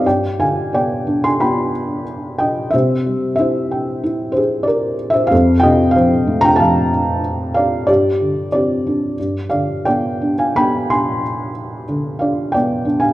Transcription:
X:1
M:4/4
L:1/16
Q:1/4=92
K:Gphr
V:1 name="Felt piano"
[dg]2 [fa]2 [dg]3 [ac'] [g=b]4 z2 [eg]2 | [c=e]4 [ce]6 [Ac]2 [Bd]3 [ce] | [cf]2 [eg]2 [cf]3 [gb] [f=a]4 z2 [df]2 | [Gd]4 [Gd]6 [df]2 [dg]3 [fa] |
[g=b]2 [ac']2 z6 [df]2 [dg]3 [fa] |]
V:2 name="Felt piano"
G,,2 D,2 =B,2 D2 B,8 | C,2 G,2 =E2 g2 E8 | F,,2 C,2 F,2 =A,2 F,8 | G,,2 D,2 C2 D2 G,,2 D,2 =B,2 D2 |
=B,8 D,2 D2 B,2 D2 |]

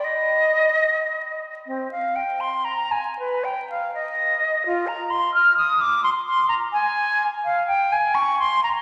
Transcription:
X:1
M:6/8
L:1/8
Q:3/8=84
K:Eb
V:1 name="Flute"
e4- e z | C f g c' b a | =B g f e3 | F b c' f' e' d' |
c' c' b a3 | [K:Fm] f g a d' c' b |]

